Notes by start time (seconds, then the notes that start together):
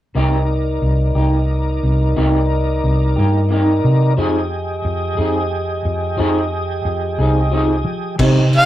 0.15 C2 C3 A#3 D#4 G4 A#4 D5
0.82 C2
1.15 C2 A#3 D#4 G4
1.83 C2
2.16 C2 C3 A#3 D#4 G4
2.84 C2
3.16 G2 A#3 D#4 G4
3.49 C3 A#3 D#4 G4
3.84 C3
4.17 F2 F3 C4 D#4 G4 G#4 D#5
4.85 F2
5.17 F2 C4 D#4 G#4
5.85 F2
6.17 F2 F3 C4 D#4 G#4
6.85 F2
7.18 C2 C4 D#4 G#4
7.51 F3 C4 D#4 G#4
7.85 F3
8.19 C3 G3 C4 D#4 G4 C5 D#5, kick, crash
8.53 D#4 G4 C5 D#5 F5, ride